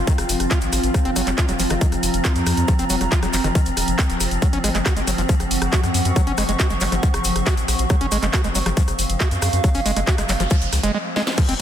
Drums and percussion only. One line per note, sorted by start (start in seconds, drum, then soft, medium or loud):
0.07 kick loud
0.07 closed hi-hat medium
0.07 shaker medium
0.18 cross-stick medium
0.18 closed hi-hat medium
0.18 shaker soft
0.29 open hi-hat loud
0.29 shaker loud
0.40 cross-stick soft
0.40 closed hi-hat medium
0.40 shaker soft
0.51 kick loud
0.51 clap loud
0.51 closed hi-hat medium
0.51 shaker medium
0.61 closed hi-hat medium
0.61 shaker soft
0.73 cross-stick soft
0.73 open hi-hat loud
0.73 shaker loud
0.83 closed hi-hat medium
0.83 shaker soft
0.94 kick loud
0.94 cross-stick medium
0.94 closed hi-hat medium
0.94 shaker medium
1.05 closed hi-hat medium
1.16 cross-stick soft
1.16 open hi-hat loud
1.16 shaker loud
1.27 clap soft
1.27 closed hi-hat medium
1.27 shaker soft
1.38 kick loud
1.38 clap loud
1.38 closed hi-hat medium
1.38 shaker medium
1.48 cross-stick soft
1.48 closed hi-hat medium
1.48 shaker soft
1.59 open hi-hat loud
1.59 shaker medium
1.69 cross-stick medium
1.69 closed hi-hat medium
1.69 shaker soft
1.81 kick loud
1.81 closed hi-hat medium
1.81 shaker medium
1.92 cross-stick soft
1.92 closed hi-hat medium
1.92 shaker soft
2.03 open hi-hat loud
2.03 shaker loud
2.14 closed hi-hat medium
2.14 shaker soft
2.24 kick loud
2.24 cross-stick soft
2.24 clap loud
2.24 closed hi-hat medium
2.24 shaker medium
2.36 closed hi-hat medium
2.36 shaker soft
2.46 cross-stick medium
2.46 open hi-hat loud
2.46 shaker loud
2.57 closed hi-hat medium
2.57 shaker soft
2.68 kick loud
2.68 cross-stick soft
2.68 closed hi-hat medium
2.68 shaker medium
2.79 closed hi-hat medium
2.79 shaker soft
2.90 open hi-hat loud
2.90 shaker loud
3.01 cross-stick soft
3.01 closed hi-hat medium
3.01 shaker soft
3.12 kick loud
3.12 clap loud
3.12 closed hi-hat medium
3.12 shaker medium
3.23 cross-stick medium
3.23 closed hi-hat medium
3.23 shaker soft
3.33 clap soft
3.33 open hi-hat loud
3.33 shaker medium
3.44 cross-stick soft
3.44 closed hi-hat medium
3.44 shaker soft
3.55 kick loud
3.55 closed hi-hat medium
3.55 shaker medium
3.66 closed hi-hat medium
3.66 shaker soft
3.77 cross-stick soft
3.77 open hi-hat loud
3.77 shaker medium
3.88 closed hi-hat medium
3.88 shaker soft
3.99 kick loud
3.99 cross-stick medium
3.99 clap loud
3.99 closed hi-hat medium
3.99 shaker medium
4.10 closed hi-hat medium
4.10 shaker soft
4.20 cross-stick soft
4.20 open hi-hat loud
4.20 shaker loud
4.31 closed hi-hat medium
4.31 shaker soft
4.42 kick loud
4.42 closed hi-hat medium
4.42 shaker medium
4.53 closed hi-hat medium
4.64 cross-stick soft
4.64 open hi-hat loud
4.64 shaker medium
4.75 clap soft
4.75 closed hi-hat medium
4.75 shaker soft
4.86 kick loud
4.86 cross-stick medium
4.86 clap loud
4.86 closed hi-hat medium
4.86 shaker medium
4.97 closed hi-hat medium
4.97 shaker soft
5.07 cross-stick soft
5.07 open hi-hat loud
5.07 shaker loud
5.18 closed hi-hat medium
5.18 shaker soft
5.29 kick loud
5.29 closed hi-hat medium
5.29 shaker medium
5.40 cross-stick soft
5.40 closed hi-hat medium
5.40 shaker soft
5.51 open hi-hat loud
5.51 shaker medium
5.61 cross-stick medium
5.61 closed hi-hat medium
5.61 shaker soft
5.73 kick loud
5.73 clap loud
5.73 closed hi-hat medium
5.73 shaker medium
5.83 cross-stick soft
5.83 closed hi-hat medium
5.83 shaker soft
5.94 open hi-hat loud
5.94 shaker medium
6.05 closed hi-hat medium
6.05 shaker soft
6.16 kick loud
6.16 cross-stick soft
6.16 closed hi-hat medium
6.16 shaker medium
6.27 closed hi-hat medium
6.38 cross-stick medium
6.38 open hi-hat loud
6.38 shaker medium
6.49 closed hi-hat medium
6.49 shaker soft
6.60 kick loud
6.60 cross-stick soft
6.60 clap loud
6.60 closed hi-hat medium
6.60 shaker medium
6.70 closed hi-hat medium
6.70 shaker soft
6.80 clap soft
6.80 open hi-hat loud
6.80 shaker medium
6.92 cross-stick soft
6.92 closed hi-hat medium
6.92 shaker soft
7.03 kick loud
7.03 closed hi-hat medium
7.03 shaker medium
7.14 cross-stick medium
7.14 closed hi-hat medium
7.14 shaker soft
7.24 open hi-hat loud
7.24 shaker medium
7.36 cross-stick soft
7.36 closed hi-hat medium
7.36 shaker soft
7.46 kick loud
7.46 clap loud
7.46 closed hi-hat medium
7.46 shaker soft
7.57 closed hi-hat medium
7.57 shaker soft
7.68 cross-stick soft
7.68 open hi-hat loud
7.68 shaker medium
7.78 closed hi-hat medium
7.78 shaker soft
7.89 kick loud
7.89 cross-stick medium
7.89 closed hi-hat medium
7.89 shaker soft
8.01 closed hi-hat medium
8.12 cross-stick soft
8.12 open hi-hat loud
8.12 shaker medium
8.22 clap soft
8.22 closed hi-hat medium
8.22 shaker soft
8.33 kick loud
8.33 clap loud
8.33 closed hi-hat medium
8.33 shaker soft
8.44 cross-stick soft
8.44 closed hi-hat medium
8.44 shaker soft
8.55 open hi-hat loud
8.55 shaker medium
8.66 cross-stick medium
8.66 closed hi-hat medium
8.66 shaker soft
8.77 kick loud
8.77 closed hi-hat medium
8.77 shaker medium
8.88 cross-stick soft
8.88 closed hi-hat medium
8.88 shaker soft
8.99 open hi-hat loud
8.99 shaker medium
9.09 closed hi-hat medium
9.09 shaker soft
9.20 kick loud
9.20 cross-stick soft
9.20 clap loud
9.20 closed hi-hat medium
9.20 shaker soft
9.31 closed hi-hat medium
9.31 shaker soft
9.42 cross-stick medium
9.42 open hi-hat loud
9.42 shaker medium
9.53 closed hi-hat medium
9.53 shaker soft
9.64 kick loud
9.64 cross-stick soft
9.64 closed hi-hat medium
9.64 shaker medium
9.74 open hi-hat medium
9.74 shaker soft
9.86 open hi-hat loud
9.86 shaker medium
9.96 cross-stick soft
9.96 closed hi-hat medium
9.96 shaker soft
10.07 kick loud
10.07 clap loud
10.07 closed hi-hat medium
10.07 shaker soft
10.18 cross-stick medium
10.18 closed hi-hat medium
10.18 shaker soft
10.29 clap soft
10.29 open hi-hat loud
10.29 shaker medium
10.40 cross-stick soft
10.40 closed hi-hat medium
10.40 shaker soft
10.50 kick loud
10.50 closed hi-hat medium
10.50 shaker soft
10.62 closed hi-hat medium
10.62 shaker soft
10.73 cross-stick soft
10.73 open hi-hat loud
10.73 shaker medium
10.83 closed hi-hat medium
10.83 shaker soft
11.16 snare medium
11.27 snare medium
11.37 kick loud
11.37 closed hi-hat medium
11.37 crash loud
11.37 shaker soft
11.49 closed hi-hat medium